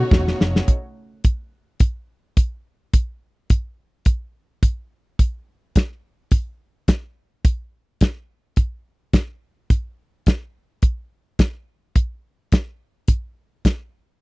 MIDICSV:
0, 0, Header, 1, 7, 480
1, 0, Start_track
1, 0, Tempo, 563910
1, 577, Time_signature, 4, 2, 24, 8
1, 12099, End_track
2, 0, Start_track
2, 0, Title_t, "Alto flute"
2, 0, Program_c, 0, 73
2, 0, Note_on_c, 0, 66, 87
2, 320, Note_off_c, 0, 66, 0
2, 12099, End_track
3, 0, Start_track
3, 0, Title_t, "String section"
3, 0, Program_c, 1, 48
3, 0, Note_on_c, 1, 57, 86
3, 0, Note_on_c, 1, 66, 84
3, 0, Note_on_c, 1, 73, 97
3, 544, Note_off_c, 1, 57, 0
3, 544, Note_off_c, 1, 66, 0
3, 544, Note_off_c, 1, 73, 0
3, 12099, End_track
4, 0, Start_track
4, 0, Title_t, "Grand piano"
4, 0, Program_c, 2, 0
4, 0, Control_c, 2, 64, 127
4, 0, Note_on_c, 2, 47, 74
4, 0, Note_on_c, 2, 57, 75
4, 0, Note_on_c, 2, 61, 68
4, 0, Note_on_c, 2, 63, 76
4, 0, Note_on_c, 2, 65, 59
4, 0, Note_on_c, 2, 66, 89
4, 231, Note_off_c, 2, 47, 0
4, 234, Note_off_c, 2, 57, 0
4, 236, Note_off_c, 2, 61, 0
4, 265, Note_off_c, 2, 66, 0
4, 586, Control_c, 2, 64, 0
4, 587, Note_off_c, 2, 65, 0
4, 593, Note_off_c, 2, 63, 0
4, 12099, End_track
5, 0, Start_track
5, 0, Title_t, "String section"
5, 0, Program_c, 3, 48
5, 0, Note_on_c, 3, 49, 75
5, 0, Note_on_c, 3, 57, 65
5, 0, Note_on_c, 3, 63, 76
5, 542, Note_off_c, 3, 49, 0
5, 542, Note_off_c, 3, 57, 0
5, 545, Note_off_c, 3, 63, 0
5, 12099, End_track
6, 0, Start_track
6, 0, Title_t, "Fingered electric bass"
6, 0, Program_c, 4, 33
6, 99, Note_on_c, 4, 28, 79
6, 259, Note_off_c, 4, 28, 0
6, 343, Note_on_c, 4, 29, 87
6, 502, Note_off_c, 4, 29, 0
6, 12099, End_track
7, 0, Start_track
7, 0, Title_t, "Drums"
7, 97, Note_on_c, 9, 36, 117
7, 109, Note_on_c, 9, 38, 90
7, 182, Note_off_c, 9, 36, 0
7, 194, Note_off_c, 9, 38, 0
7, 236, Note_on_c, 9, 38, 76
7, 322, Note_off_c, 9, 38, 0
7, 350, Note_on_c, 9, 38, 102
7, 435, Note_off_c, 9, 38, 0
7, 478, Note_on_c, 9, 38, 96
7, 563, Note_off_c, 9, 38, 0
7, 578, Note_on_c, 9, 42, 65
7, 579, Note_on_c, 9, 36, 106
7, 663, Note_off_c, 9, 42, 0
7, 664, Note_off_c, 9, 36, 0
7, 1055, Note_on_c, 9, 42, 65
7, 1060, Note_on_c, 9, 36, 98
7, 1140, Note_off_c, 9, 42, 0
7, 1146, Note_off_c, 9, 36, 0
7, 1529, Note_on_c, 9, 42, 61
7, 1535, Note_on_c, 9, 36, 112
7, 1614, Note_off_c, 9, 42, 0
7, 1620, Note_off_c, 9, 36, 0
7, 2016, Note_on_c, 9, 36, 100
7, 2016, Note_on_c, 9, 42, 65
7, 2101, Note_off_c, 9, 36, 0
7, 2101, Note_off_c, 9, 42, 0
7, 2498, Note_on_c, 9, 42, 69
7, 2499, Note_on_c, 9, 36, 105
7, 2583, Note_off_c, 9, 42, 0
7, 2584, Note_off_c, 9, 36, 0
7, 2977, Note_on_c, 9, 42, 63
7, 2981, Note_on_c, 9, 36, 101
7, 3062, Note_off_c, 9, 42, 0
7, 3066, Note_off_c, 9, 36, 0
7, 3450, Note_on_c, 9, 42, 66
7, 3456, Note_on_c, 9, 36, 96
7, 3535, Note_off_c, 9, 42, 0
7, 3541, Note_off_c, 9, 36, 0
7, 3938, Note_on_c, 9, 36, 97
7, 3940, Note_on_c, 9, 42, 60
7, 4023, Note_off_c, 9, 36, 0
7, 4025, Note_off_c, 9, 42, 0
7, 4420, Note_on_c, 9, 36, 100
7, 4422, Note_on_c, 9, 42, 68
7, 4505, Note_off_c, 9, 36, 0
7, 4507, Note_off_c, 9, 42, 0
7, 4899, Note_on_c, 9, 42, 62
7, 4901, Note_on_c, 9, 36, 99
7, 4914, Note_on_c, 9, 38, 101
7, 4984, Note_off_c, 9, 42, 0
7, 4986, Note_off_c, 9, 36, 0
7, 4999, Note_off_c, 9, 38, 0
7, 5371, Note_on_c, 9, 42, 68
7, 5376, Note_on_c, 9, 36, 112
7, 5456, Note_off_c, 9, 42, 0
7, 5461, Note_off_c, 9, 36, 0
7, 5856, Note_on_c, 9, 42, 65
7, 5857, Note_on_c, 9, 36, 99
7, 5863, Note_on_c, 9, 38, 116
7, 5941, Note_off_c, 9, 42, 0
7, 5942, Note_off_c, 9, 36, 0
7, 5948, Note_off_c, 9, 38, 0
7, 6338, Note_on_c, 9, 36, 115
7, 6338, Note_on_c, 9, 42, 68
7, 6423, Note_off_c, 9, 36, 0
7, 6423, Note_off_c, 9, 42, 0
7, 6815, Note_on_c, 9, 42, 64
7, 6820, Note_on_c, 9, 36, 95
7, 6830, Note_on_c, 9, 38, 104
7, 6900, Note_off_c, 9, 42, 0
7, 6905, Note_off_c, 9, 36, 0
7, 6915, Note_off_c, 9, 38, 0
7, 7289, Note_on_c, 9, 42, 62
7, 7295, Note_on_c, 9, 36, 108
7, 7374, Note_off_c, 9, 42, 0
7, 7380, Note_off_c, 9, 36, 0
7, 7774, Note_on_c, 9, 42, 59
7, 7776, Note_on_c, 9, 36, 101
7, 7782, Note_on_c, 9, 38, 102
7, 7859, Note_off_c, 9, 42, 0
7, 7861, Note_off_c, 9, 36, 0
7, 7867, Note_off_c, 9, 38, 0
7, 8258, Note_on_c, 9, 36, 111
7, 8258, Note_on_c, 9, 42, 67
7, 8343, Note_off_c, 9, 36, 0
7, 8343, Note_off_c, 9, 42, 0
7, 8736, Note_on_c, 9, 42, 63
7, 8740, Note_on_c, 9, 36, 96
7, 8751, Note_on_c, 9, 38, 94
7, 8821, Note_off_c, 9, 42, 0
7, 8825, Note_off_c, 9, 36, 0
7, 8836, Note_off_c, 9, 38, 0
7, 9211, Note_on_c, 9, 42, 65
7, 9215, Note_on_c, 9, 36, 117
7, 9296, Note_off_c, 9, 42, 0
7, 9301, Note_off_c, 9, 36, 0
7, 9696, Note_on_c, 9, 42, 59
7, 9697, Note_on_c, 9, 36, 98
7, 9703, Note_on_c, 9, 38, 104
7, 9781, Note_off_c, 9, 42, 0
7, 9782, Note_off_c, 9, 36, 0
7, 9788, Note_off_c, 9, 38, 0
7, 10176, Note_on_c, 9, 42, 73
7, 10178, Note_on_c, 9, 36, 108
7, 10262, Note_off_c, 9, 42, 0
7, 10263, Note_off_c, 9, 36, 0
7, 10656, Note_on_c, 9, 42, 58
7, 10661, Note_on_c, 9, 36, 104
7, 10671, Note_on_c, 9, 38, 111
7, 10741, Note_off_c, 9, 42, 0
7, 10746, Note_off_c, 9, 36, 0
7, 10756, Note_off_c, 9, 38, 0
7, 11131, Note_on_c, 9, 42, 68
7, 11136, Note_on_c, 9, 36, 112
7, 11216, Note_off_c, 9, 42, 0
7, 11222, Note_off_c, 9, 36, 0
7, 11618, Note_on_c, 9, 36, 100
7, 11618, Note_on_c, 9, 42, 64
7, 11626, Note_on_c, 9, 38, 107
7, 11703, Note_off_c, 9, 36, 0
7, 11704, Note_off_c, 9, 42, 0
7, 11711, Note_off_c, 9, 38, 0
7, 12099, End_track
0, 0, End_of_file